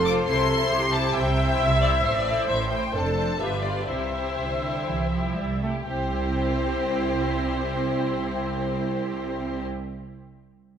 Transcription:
Already playing: F1 F2 A4
0.05 F4 C5 D6
0.27 C2 C3 E4 A4 C5 C6
0.51 E4 C5
0.72 C2 C3 G4
0.93 E4 C5 A5
1.14 C2 C3 E5 G5
1.37 E4 C5
1.59 C2 C3 E5
1.82 E4 C5 D5
2.03 A1 A2 C5
2.14 D5
2.27 E4 C5
2.48 A1 A2 C5 E5
2.70 E4 C5 G5
2.93 F1 F2 D4 A4 C5 A5
3.17 D4 C5
3.39 G1 G2 F4 G4 B4 E5
3.62 F4 B4 D5
3.88 C2 C3 E4 G4 C5 E5
4.13 E4 G4
4.37 C2 C3
4.50 D3
4.63 E4 G4
4.86 C2 E3
5.12 F3 E4 G4
5.36 C2 G3
5.62 A3 E4 G4
5.86 C2 C4 E4 G4 C5

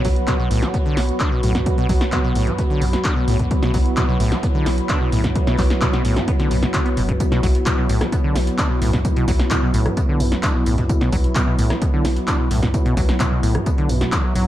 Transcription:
Already playing: F#3 B3 F#4 C#5 B5
0.05 B1 F#3, kick, open hi-hat
0.16 closed hi-hat
0.27 B2, kick, clap, closed hi-hat
0.39 B2
0.51 B1 A2, open hi-hat
0.63 F#3, snare, closed hi-hat
0.74 B3, kick, closed hi-hat
0.86 D3
0.97 B1 B2, snare, open hi-hat
1.09 closed hi-hat
1.20 D4, kick, clap, closed hi-hat
1.32 B2
1.43 B1 A2, mid tom, open hi-hat
1.55 B2, kick, snare, closed hi-hat, mid tom
1.66 kick, closed hi-hat
1.78 B2, closed hi-hat
1.89 B1 F#3, kick, open hi-hat
2.01 snare, closed hi-hat
2.12 B2, kick, clap, closed hi-hat
2.24 B2
2.35 B1 A2, open hi-hat
2.47 F#3, closed hi-hat, mid tom
2.58 B3, kick, closed hi-hat
2.70 D3
2.82 B1 B2, mid tom, open hi-hat
2.93 snare, closed hi-hat
3.04 D4, kick, clap, closed hi-hat
3.16 B2
3.28 B1 A2, mid tom, open hi-hat
3.39 B2, kick, closed hi-hat, mid tom
3.51 E4, kick, closed hi-hat
3.63 B2, snare, closed hi-hat
3.74 B1 F#3, kick, open hi-hat
3.86 closed hi-hat
3.97 B2, kick, clap, closed hi-hat
4.09 B2
4.20 B1 A2, open hi-hat
4.32 F#3, snare, closed hi-hat
4.43 B3, kick, closed hi-hat
4.55 D3
4.66 B1 B2, snare, open hi-hat
4.78 closed hi-hat
4.89 D4, kick, clap, closed hi-hat
5.01 B2
5.12 B1 A2, mid tom, open hi-hat
5.24 kick, snare, closed hi-hat, mid tom
5.35 kick, closed hi-hat
5.47 B2, snare, closed hi-hat
5.58 B1 F#3, kick, clap, open hi-hat
5.70 snare, closed hi-hat
5.81 B2, kick, clap, closed hi-hat
5.93 B2, snare, closed hi-hat
6.05 B1 A2, open hi-hat
6.16 F#3, snare, closed hi-hat, mid tom
6.28 B3, kick, closed hi-hat
6.39 D3, snare, closed hi-hat
6.51 B1 B2, mid tom, open hi-hat
6.63 B2, snare, closed hi-hat
6.74 D3, kick, clap, closed hi-hat
6.86 B3, closed hi-hat
6.97 F#1 B2, mid tom, open hi-hat
7.09 C#3, kick, closed hi-hat, mid tom
7.20 E4, kick, closed hi-hat, tambourine
7.32 B2, snare, closed hi-hat
7.43 B1 F#3, kick, open hi-hat, tambourine
7.55 closed hi-hat
7.66 B2, kick, snare, clap, closed hi-hat, tambourine
7.78 B2
7.89 B1 A2, open hi-hat, tambourine
8.01 F#3, cross-stick, snare, closed hi-hat
8.12 B3, kick, closed hi-hat, tambourine
8.24 D3
8.36 B1 B2, snare, open hi-hat, tambourine
8.47 closed hi-hat
8.58 D4, kick, snare, clap, closed hi-hat, tambourine
8.70 B2
8.82 B1 A2, mid tom, open hi-hat
8.93 kick, snare, closed hi-hat, mid tom
9.05 kick, closed hi-hat, tambourine
9.16 B2, closed hi-hat
9.28 B1 F#3, kick, open hi-hat, tambourine
9.39 snare, closed hi-hat
9.51 B2, kick, snare, clap, closed hi-hat, tambourine
9.63 B2
9.74 B1 A2, open hi-hat, tambourine
9.86 F#3, cross-stick, closed hi-hat, mid tom
9.97 B3, kick, closed hi-hat, tambourine
10.09 D3
10.20 B1 B2, mid tom, open hi-hat, tambourine
10.32 snare, closed hi-hat
10.43 D4, kick, snare, clap, closed hi-hat, tambourine
10.55 B2
10.66 B1 A2, mid tom, open hi-hat, tambourine
10.78 B2, kick, snare, closed hi-hat, mid tom
10.89 kick, closed hi-hat, tambourine
11.01 B2, snare, closed hi-hat
11.12 B1 F#3, kick, open hi-hat, tambourine
11.24 closed hi-hat
11.35 B2, kick, snare, clap, closed hi-hat, tambourine
11.47 B2
11.59 B1 A2, open hi-hat, tambourine
11.70 F#3, cross-stick, snare, closed hi-hat
11.82 B3, kick, closed hi-hat, tambourine
11.93 D3
12.05 B1 B2, snare, open hi-hat, tambourine
12.16 closed hi-hat
12.27 D4, kick, snare, clap, closed hi-hat, tambourine
12.40 B2
12.51 B1 A2, mid tom, open hi-hat
12.63 B2, kick, snare, closed hi-hat, mid tom
12.74 kick, closed hi-hat, tambourine
12.86 B2, closed hi-hat
12.97 B1 F#3, kick, open hi-hat, tambourine
13.09 snare, closed hi-hat
13.20 B2, kick, snare, clap, closed hi-hat, tambourine
13.32 B2
13.43 B1 A2, open hi-hat, tambourine
13.55 F#3, cross-stick, closed hi-hat, mid tom
13.66 B3, kick, closed hi-hat, tambourine
13.78 D3, closed hi-hat
13.89 B1 B2, mid tom, open hi-hat, tambourine
14.01 snare, closed hi-hat
14.12 E3, kick, snare, clap, closed hi-hat, tambourine
14.24 F#3
14.35 B1 F#3, mid tom, open hi-hat, tambourine

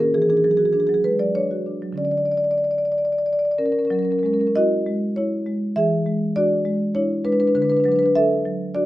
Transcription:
Already playing: D#3
0.00 C#4 A#4
0.14 E3 G#4
0.22 G#4
0.29 D4 G#4
0.37 G#4
0.44 F#3 G#4
0.51 G#4
0.57 F#4 G#4
0.65 G#4
0.73 D4 G#4
0.80 G#4
0.87 F#3 G#4
0.94 G#4
1.04 G#3 B4
1.19 F#3 D5
1.35 D4 C#5
1.51 F#4
1.66 D4
1.82 F#3
1.93 D3 F#3 C#4
1.98 D5
2.05 D5
2.11 D5
2.18 D5
2.25 D5
2.32 D5
2.37 D5
2.44 D5
2.51 D5
2.58 D5
2.64 D5
2.71 D5
2.78 D5
2.85 D5
2.92 D5
2.98 D5
3.05 D5
3.12 D5
3.18 D5
3.26 D5
3.33 D5
3.39 D5
3.45 D5
3.51 D5
3.58 C#4 A#4
3.65 C#4 A#4
3.72 C#4 A#4
3.79 C#4 A#4
3.85 C#4 A#4
3.90 F#3 A#4
3.95 C#4
3.99 C#4 A#4
4.05 A#4
4.11 C#4 A#4
4.18 C#4 A#4
4.23 G#3 C#4 A#4
4.33 C#4 A#4
4.40 C#4 A#4
4.47 C#4 A#4
4.55 E4 F#4 D#5
4.86 G#3
5.16 E4 C#5
5.46 G#3
5.76 E3 G#4 E5
6.06 G#3
6.36 D4 F#4 D5
6.65 G#3
6.95 D4 E4 C#5
7.25 G#3 D4 B4
7.32 D4 B4
7.40 D4 B4
7.47 D4 B4
7.55 D3 D4 B4
7.62 D4 B4
7.70 D4 B4
7.77 D4 B4
7.84 F#3 B4
7.88 D4 B4
7.96 D4 B4
8.03 D4 B4
8.15 D4 A4 E5
8.45 F#3
8.75 D4 F#4 D5

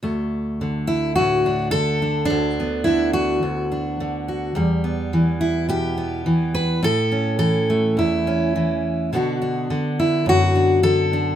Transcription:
0.03 D2 A3
0.61 D3
0.87 E4
1.16 A2 F#4
1.46 D4
1.71 D3 A4
2.02 D4
2.25 D4
2.30 D2
2.60 B3
2.84 D3 E4
3.13 F#4
3.43 D2
3.72 D4
4.00 D3
4.28 F#4
4.55 E2 G3
4.84 B3
5.13 E3
5.41 E4
5.69 B2 G4
5.98 B3
6.26 E3
6.55 B4
6.83 A2 A4
7.12 C#4
7.39 E3 A4
7.70 A3
7.97 E2 E4
8.27 C#4
8.56 E3
9.13 B2 D3 B3 D4 F#4
9.42 D4
9.70 D3
10.00 E4
10.26 F#2 F#4
10.55 D4
10.83 D3 A4
11.13 D4

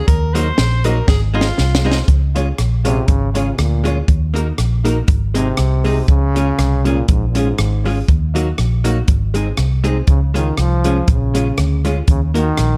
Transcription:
0.07 D#2 A#4, kick, closed hi-hat
0.34 F#3 A#3 D#4 F#4 A#4 C5 D#5, closed hi-hat
0.58 A#1, snare, closed hi-hat
0.84 F#3 A#3 D#4 F#4 A#4 D#5, closed hi-hat
1.07 G#1 G#4, muted hollow-body jazz guitar stroke, kick, snare
1.34 G#3 C4 D#4 F4 G#4 C5 D#5
1.41 snare
1.58 C2, snare
1.75 snare
1.84 G#3 C4 D#4 G#4 C5 D#5
1.92 snare
2.08 C#2, kick, closed hi-hat
2.35 G#3 C#4 F4 G#4 C#5, closed hi-hat
2.58 A#1, cross-stick, closed hi-hat
2.84 C3 G#3 C#4 F4 G#4 C#5, closed hi-hat
3.06 G#1 C#3, muted hollow-body jazz guitar stroke, kick, closed hi-hat
3.33 C#3 G#3 C#4 F4 G#4 C#5, closed hi-hat
3.58 D2 A#2, cross-stick, closed hi-hat
3.84 G#3 C#4 F4 G#4 C#5, closed hi-hat
4.08 D#2, kick, closed hi-hat
4.34 A#3 D#4 F#4 A#4, closed hi-hat
4.58 A#1, cross-stick, closed hi-hat
4.84 A#3 D#4 F#4 A#4, closed hi-hat
5.07 G#1, muted hollow-body jazz guitar stroke, kick, closed hi-hat
5.34 C3 G#3 C4 D#4 G#4, closed hi-hat
5.57 C2, cross-stick, closed hi-hat
5.84 G#3 C4 D#4 G#4, open hi-hat
6.08 C#2 C#3, kick, closed hi-hat
6.34 G#3 C#4 F4 G#4, closed hi-hat
6.58 C2, cross-stick, closed hi-hat
6.84 A#2 G#3 C#4 F4 G#4, closed hi-hat
7.08 A#1 G#2, muted hollow-body jazz guitar stroke, kick, closed hi-hat
7.29 A#2
7.35 G#2 G#3 C#4 F4 G#4, closed hi-hat
7.58 G#1, cross-stick, closed hi-hat
7.84 G#3 C#4 F4 G#4, open hi-hat
8.08 D#2, kick, closed hi-hat
8.34 F#3 A#3 D#4 F#4, closed hi-hat
8.58 A#1, cross-stick, closed hi-hat
8.84 F#3 A#3 D#4 F#4, closed hi-hat
9.08 G#1, muted hollow-body jazz guitar stroke, kick, closed hi-hat
9.34 G#3 C4 D#4 G#4, closed hi-hat
9.57 C2, cross-stick, closed hi-hat
9.84 G#3 C4 D#4 G#4, closed hi-hat
10.07 C#2 C#3, kick, closed hi-hat
10.34 D#3 G#3 C#4 F4 G#4, closed hi-hat
10.57 C2 F3, cross-stick, closed hi-hat
10.84 G#3 C#4 F4 G#4, closed hi-hat
11.08 A#1 C#3, kick, closed hi-hat
11.34 G#3 C#4 F4 G#4, closed hi-hat
11.58 D2, cross-stick, closed hi-hat
11.85 G#3 C#4 F4 G#4, closed hi-hat
12.08 D#2 C#3, kick, closed hi-hat
12.34 D#3 A#3 D#4 F#4 A#4, closed hi-hat
12.57 A#1, cross-stick, closed hi-hat

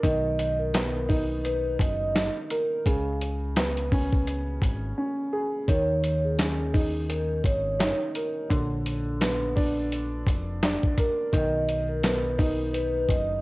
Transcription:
0.03 B1 D#3 D#5, kick, closed hi-hat
0.39 closed hi-hat
0.59 A#4
0.74 B3, snare, clap, closed hi-hat
1.09 D#4, kick, open hi-hat
1.44 B4, closed hi-hat
1.79 F#1 D#5, kick, closed hi-hat
2.15 D#4, snare, clap, closed hi-hat
2.50 A#4, closed hi-hat
2.86 C#2 C#3, kick, closed hi-hat
3.21 closed hi-hat
3.56 B3, snare, clap, closed hi-hat
3.77 closed hi-hat
3.92 C#4, kick, open hi-hat
4.13 kick
4.27 closed hi-hat
4.62 G#1, kick, closed hi-hat
4.98 C#4
5.33 G#4
5.68 D#2 D#3 C#5, kick, closed hi-hat
6.04 closed hi-hat
6.24 G#4
6.38 C#4, snare, clap, closed hi-hat
6.74 D#4, kick, open hi-hat
7.09 A#4, closed hi-hat
7.44 G#1 C#5, kick, closed hi-hat
7.79 D#4, snare, clap, closed hi-hat
8.15 A#4, closed hi-hat
8.50 A#1 D3, kick, closed hi-hat
8.86 closed hi-hat
9.21 B3, snare, clap, closed hi-hat
9.56 D4, kick, open hi-hat
9.92 closed hi-hat
10.26 F1, kick, closed hi-hat
10.63 D4, snare, clap, closed hi-hat
10.83 kick
10.98 A#4, kick, closed hi-hat
11.33 B1 D#3 D#5, kick, closed hi-hat
11.69 closed hi-hat
11.88 A#4
12.03 B3, snare, clap, closed hi-hat
12.39 D#4, kick, open hi-hat
12.73 B4, closed hi-hat
13.09 F#1 D#5, kick, closed hi-hat

